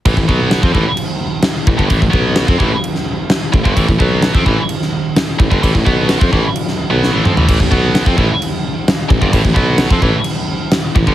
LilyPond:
<<
  \new Staff \with { instrumentName = "Distorted electric guitar" } { \clef bass \time 4/4 \key a \minor \tempo 4 = 129 <a, e>16 <a, e>16 <b, fis b>8. <f c'>16 <a, e>16 r4. r16 <a, e>16 <g, d>16 | <a, e>16 <a, e>16 <b, fis b>8. <f c'>16 <a, e>16 r4. r16 <a, e>16 <g, d>16 | <a, e>16 <a, e>16 <b, fis b>8. <f c'>16 <a, e>16 r4. r16 <a, e>16 <g, d>16 | <a, e>16 <a, e>16 <b, fis b>8. <f c'>16 <a, e>16 r4 <b, fis b>8 <a, e>16 <f c'>16 <a, e>16 |
<a, e>16 <a, e>16 <b, fis b>8. <f c'>16 <a, e>16 r4. r16 <a, e>16 <g, d>16 | <a, e>16 <a, e>16 <b, fis b>8. <f c'>16 <a, e>16 r4. r16 <a, e>16 <g, d>16 | }
  \new Staff \with { instrumentName = "Tuba" } { \clef bass \time 4/4 \key a \minor a,,16 a,,16 b,,8. f,16 a,,16 r4. r16 a,,16 g,,16 | a,,16 a,,16 b,,8. f,16 a,,16 r4. r16 a,,16 g,,16 | a,,16 a,,16 b,,8. f,16 a,,16 r4. r16 a,,16 g,,16 | a,,16 a,,16 b,,8. f,16 a,,16 r4 b,,8 a,,16 f,16 a,,16 |
a,,16 a,,16 b,,8. f,16 a,,16 r4. r16 a,,16 g,,16 | a,,16 a,,16 b,,8. f,16 a,,16 r4. r16 a,,16 g,,16 | }
  \new DrumStaff \with { instrumentName = "Drums" } \drummode { \time 4/4 <cymc bd>16 bd16 bd8 <cymc sn>16 bd16 bd8 cymc4 <cymc sn>8 bd16 bd16 | <cymc bd>16 bd16 bd8 <cymc sn>16 bd16 bd8 cymc16 sn8. <cymc sn>8 bd16 bd16 | <cymc bd>16 bd16 bd8 <cymc sn>16 bd16 bd8 cymc16 sn8. <cymc sn>8 bd16 bd16 | <cymc bd>16 bd16 bd8 <cymc sn>16 bd16 bd8 cymc16 sn8. sn8 toml16 tomfh16 |
<cymc bd>16 bd16 bd8 <cymc sn>16 bd16 bd8 cymc4 <cymc sn>8 bd16 bd16 | <cymc bd>16 bd16 bd8 <cymc sn>16 bd16 bd8 cymc4 <cymc sn>8 bd16 bd16 | }
>>